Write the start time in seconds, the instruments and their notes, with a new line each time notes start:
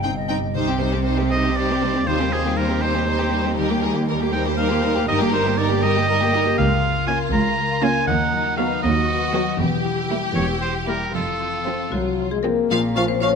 Already playing: double bass section G1, cello section G2, harp C3 G3, violin section D#4, flute section G5
0.03 viola section C4 D#4, harp C5, violin section G5
0.16 flute section D#5
0.29 harp G3, viola section C4 D#4, violin section G5
0.54 double bass section C2, harp C3, cello section C3, viola section G3 D#4, violin section C5
0.69 viola section C4, violin section G4
0.81 harp G3, viola section G3 D#4, violin section C5
0.94 viola section C4, violin section G4
1.05 viola section G3 D#4, harp C5, violin section C5
1.19 viola section C4, violin section G4
1.30 harp G4, violin section G4 C5, oboe D#5
1.34 viola section G3 D#4
1.44 viola section C4, violin section G4
1.55 harp C5, violin section C5, oboe D5
1.59 viola section G3 D#4
1.71 viola section C4, violin section G4
1.81 harp G3, viola section G3 D#4, violin section C5
1.95 viola section C4, violin section G4
2.05 double bass section D#2, cello section D#2, harp D#3, viola section G3 D#4, violin section F4 C5, oboe C5
2.20 viola section C4, violin section G4
2.31 harp G3, viola section G3 D#4, oboe G#4, violin section C5
2.45 viola section C4, violin section G4
2.57 viola section G3 D#4, oboe A#4, harp C5, violin section C5
2.69 viola section C4, violin section G4
2.82 viola section G3 D#4, violin section D#4 C5, harp G4, oboe C5
2.94 viola section C4, violin section G4
3.07 viola section G3 D#4, harp C5, violin section C5
3.19 viola section C4, violin section G4
3.32 harp G3, viola section G3 D#4, violin section C5
3.45 viola section C4, violin section G4
3.57 harp D#3, viola section G3 D#4, violin section G4 A#4
3.70 viola section A#3 G4, violin section G4
3.82 viola section G3 D#4, harp A#3, violin section G#4 A#4
3.95 viola section A#3 G4, violin section G4
4.08 viola section G3 D#4, violin section A#4, harp A#4
4.21 viola section A#3 G4, violin section G4
4.32 viola section G3 D#4, harp G4, violin section A#4 C5, oboe G5
4.45 viola section A#3 G4, violin section G4
4.57 viola section G3 D#4, harp A#4, violin section A#4, oboe F5
4.71 viola section A#3 G4, violin section G4
4.83 viola section G3 D#4, harp A#3, violin section A#4
4.96 viola section A#3 G4, violin section G4
5.08 double bass section G1, cello section G2, harp G2, viola section G3 D#4, violin section A#4, oboe D#5
5.21 viola section A#3 G4, violin section G4
5.32 viola section G3 D#4, harp A#3, violin section A#4, oboe C5
5.46 viola section A#3 G4, violin section G4
5.58 viola section G3 D#4, harp A#4, violin section A#4, oboe D5
5.70 viola section A#3 G4, violin section G4
5.83 viola section G3 D#4, violin section G4 A#4, harp G4, oboe D#5
5.96 viola section A#3 G4, violin section G4
6.08 viola section G3 D#4, violin section A#4, harp A#4
6.21 viola section A#3 G4, violin section G4
6.33 viola section G3 D#4, harp A#3, violin section G4 A#4
6.46 viola section A#3 G4, violin section G4
6.58 double bass section C#2, cello section C#2, harp C#3, violin section F4, oboe F5
6.83 harp A#3
7.07 viola section A#3 C#4, violin section F4, harp A#4, oboe G#5
7.33 cello section C#2, double bass section C#2, harp F4, oboe A#5
7.58 harp A#4
7.82 harp A#3, viola section A#3 C#4, violin section F4, oboe G#5
8.07 double bass section D#2, cello section D#2, harp D#3, violin section D#4, oboe F#5
8.32 harp F#3
8.57 viola section F#3 B3, violin section F#4, harp B4, oboe F5
8.82 double bass section D#2, cello section D#2, violin section F#4, harp F#4, oboe D#5
9.08 harp B4
9.33 harp F#3, viola section F#3 B3, violin section F#4
9.59 double bass section E1, cello section E2, harp E3, violin section G4
9.85 harp E4
10.10 viola section G3 A#3, violin section E4, harp G4
10.35 double bass section E1, cello section E2, oboe C#5, harp E5
10.61 harp G4, oboe C5
10.88 viola section G3 A#3, harp E4, violin section E4, oboe A#4
11.14 double bass section F1, cello section F2, harp F3, violin section F4, oboe A4
11.40 harp C4
11.67 viola section F3 C4, violin section C4, harp F4
11.92 double bass section C2, cello section C2, french horn section F#3, marimba F#4, harp C5
12.19 harp F4
12.31 french horn section G#3, marimba G#4
12.43 viola section F3 C4, french horn section A#3, violin section C4, harp C4, marimba A#4
12.70 double bass section A#1, harp A#2, cello section A#2, viola section F3, violin section C#4 F5
12.95 viola section F3, harp F3, bassoon F3, violin section C#4 F5, clarinet F4, oboe F5, flute section C#6
13.08 french horn section C4, marimba C5
13.19 viola section F3, french horn section C#4, violin section C#4 F5, clarinet F4, harp A#4, marimba C#5, oboe F5, flute section C#6
13.23 bassoon F3